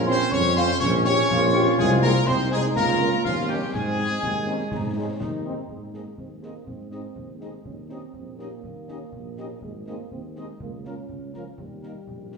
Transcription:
Already playing: A#1 C#4
0.07 C4 C#4 F4 C5 C6, snare
0.31 F2 C#4 C#5 C#6, concert bass drum, snare
0.56 C4 C#4 F4 C5 C6, snare
0.68 snare
0.80 A#1 C#4 C#5 C#6, concert bass drum, snare
1.05 C#4 G4 C#5 C#6, snare
1.17 snare
1.29 A#1 F4, concert bass drum, snare
1.55 C#4 G4
1.78 C2 G#3 G#4 G#5, concert bass drum, crash
2.01 A#3 C4 D#4 G#4 A#4 A#5, snare
2.26 C2 C4 D#4 C5 C6, concert bass drum, snare
2.51 G#3 C4 D#4 G#4 G#5, snare
2.64 snare
2.75 C#2 A#3 F4 A#4 A#5, concert bass drum, snare
3.00 A#3 C#4 F4, snare
3.13 snare
3.24 D#2 F3 C#4 F4 F5, concert bass drum, snare
3.48 G3 A#3 C#4 D#4 G4 G5
3.73 G#2 G#3 C4 G#4 G#5, concert bass drum, crash
3.98 G#3 C4 D#4, snare
4.23 D#2 C4, concert bass drum, snare
4.47 G#3 C4 C#4 D#4, snare
4.59 snare
4.71 G#2 D#4, concert bass drum, snare
4.96 G#3 C4 C#4 D#4
5.19 D#2 D#4, concert bass drum, snare
5.44 G#3 C4 D#4
5.69 G#2 G#3, concert bass drum
5.93 A#3 C4 D#4 G#4 D#5, snare
6.18 D#2 C4, concert bass drum
6.41 A#3 C4 D#4 G#4 D#5, snare
6.66 G#2 C4, concert bass drum
6.91 C4 D#4 G#4 D#5, snare
7.15 D#2, concert bass drum
7.40 G#3 C4 D#4 G#4 D#5, snare
7.65 D#2 C#4, concert bass drum
7.89 C4 C#4 D#4 G4 D#5, snare
8.14 A#1, concert bass drum
8.38 A#3 C#4 D#4 G4 D#5, snare
8.63 D#2, concert bass drum
8.88 C#4 D#4 G4 D#5, snare
9.12 A#1, concert bass drum
9.37 C#4 D#4 G4 D#5, snare
9.62 G#1 G#3, concert bass drum
9.86 A#3 C4 D#4 G#4 D#5, snare
10.11 D#2 C4, concert bass drum
10.36 G#3 C4 D#4 G#4 D#5, snare
10.60 C#2 A#3, concert bass drum
10.85 A#3 C#4 F4 A#4, snare
11.09 C#2, concert bass drum
11.34 F3 A#3 C#4 F4 A#4, snare
11.58 D#2 G3, concert bass drum
11.83 A#3 D#4 A#4, snare
12.07 A#1, concert bass drum
12.32 A#3 D#4 A#4, snare

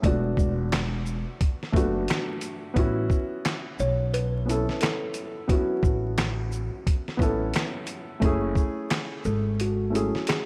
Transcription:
0.02 E1 A3 B3 D4 D5, kick, closed hi-hat
0.07 F#4
0.37 E1, kick, shaker
0.72 snare, clap, closed hi-hat
1.06 shaker
1.41 kick, closed hi-hat
1.63 snare
1.72 F#1 A3 B3 D4, kick
1.76 F#4, closed hi-hat, shaker
2.08 snare, clap, closed hi-hat
2.41 closed hi-hat, shaker
2.74 A1 B3 C#4 E4, kick, closed hi-hat
2.79 F#4
3.10 kick, shaker
3.45 snare, clap, closed hi-hat
3.79 B1 C#5, shaker
4.14 B4, closed hi-hat
4.45 B3 C#4 E4
4.50 A4, closed hi-hat, shaker
4.69 snare
4.81 A4, snare, clap, closed hi-hat
5.14 closed hi-hat, shaker
5.47 B3 C#4 E4 F#4, kick, closed hi-hat
5.52 F#4
5.83 A1, kick, shaker
6.18 snare, clap, closed hi-hat
6.52 shaker
6.87 kick, closed hi-hat
7.08 snare
7.17 A1 B3 C#4 E4, kick
7.22 A4, closed hi-hat, shaker
7.54 snare, clap, closed hi-hat
7.87 closed hi-hat, shaker
8.20 F#1 A3 C#4 E4, kick, closed hi-hat
8.25 G#4
8.55 kick, shaker
8.90 snare, clap, closed hi-hat
9.25 G#1 A4, shaker
9.60 F#4, closed hi-hat
9.90 A3 C#4 E4
9.95 G#4, closed hi-hat, shaker
10.15 snare
10.27 G#4, snare, clap, closed hi-hat

